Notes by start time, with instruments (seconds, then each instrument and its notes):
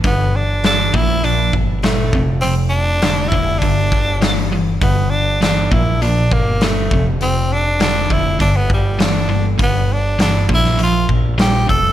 0.04 picked electric bass G1, overdriven electric guitar G2 D3, tenor saxophone B3, kick, open hi-hat
0.36 tenor saxophone D4
0.64 overdriven electric guitar G2 E3, tenor saxophone D4, snare, open hi-hat
0.94 picked electric bass A#1, overdriven electric guitar A#2 F3, tenor saxophone E4, kick
1.24 overdriven electric guitar A#2 F3, tenor saxophone D4, open hi-hat
1.53 picked electric bass G1, kick
1.83 overdriven electric guitar A#2 G3, tenor saxophone A3, snare, open hi-hat
2.13 picked electric bass F1, overdriven electric guitar F2 C3, kick
2.41 overdriven electric guitar F2 C3, tenor saxophone C4, open hi-hat
2.70 tenor saxophone D4
3.02 overdriven electric guitar F2 D3, snare, open hi-hat
3.29 picked electric bass F1, tenor saxophone E4, kick
3.33 overdriven electric guitar F2 D3
3.59 picked electric bass G1, overdriven electric guitar G2 D3, tenor saxophone D4, kick, open hi-hat
3.92 picked electric bass G1, kick
4.22 overdriven electric guitar G2 E3, snare, open hi-hat
4.52 overdriven electric guitar G2 E3
4.81 picked electric bass G1, overdriven electric guitar G2 D3, tenor saxophone B3, kick, open hi-hat
5.10 tenor saxophone D4
5.41 overdriven electric guitar G2 E3, tenor saxophone D4, snare, open hi-hat
5.71 picked electric bass A#1, overdriven electric guitar A#2 F3, tenor saxophone E4, kick
6.02 overdriven electric guitar A#2 F3, tenor saxophone D4, open hi-hat
6.31 picked electric bass G1, tenor saxophone A#3, kick
6.61 overdriven electric guitar A#2 G3, tenor saxophone A3, snare, open hi-hat
6.91 picked electric bass F1, overdriven electric guitar F2 C3, kick
7.21 overdriven electric guitar F2 C3, tenor saxophone C4, open hi-hat
7.53 tenor saxophone D4
7.80 overdriven electric guitar F2 D3, tenor saxophone D4, snare, open hi-hat
8.10 picked electric bass F1, overdriven electric guitar F2 D3, tenor saxophone E4, kick
8.39 picked electric bass G1, overdriven electric guitar G2 D3, tenor saxophone D4, kick, open hi-hat
8.57 tenor saxophone B3
8.70 picked electric bass G1, tenor saxophone G3, kick
8.99 overdriven electric guitar G2 E3, snare, open hi-hat
9.03 tenor saxophone D4
9.29 overdriven electric guitar G2 E3
9.59 picked electric bass G1, overdriven electric guitar G2 D3, kick, open hi-hat
9.63 tenor saxophone B3
9.93 tenor saxophone D4
10.19 overdriven electric guitar G2 E3, tenor saxophone D4, snare, open hi-hat
10.49 picked electric bass A#1, overdriven electric guitar A#2 F3, kick
10.54 tenor saxophone E4
10.65 snare
10.79 overdriven electric guitar A#2 F3, open hi-hat
10.83 tenor saxophone F4
11.09 picked electric bass A#1, kick
11.38 overdriven electric guitar A#2 G3, tenor saxophone G4, snare, open hi-hat
11.67 picked electric bass F1, overdriven electric guitar F2 C3, tenor saxophone A4, kick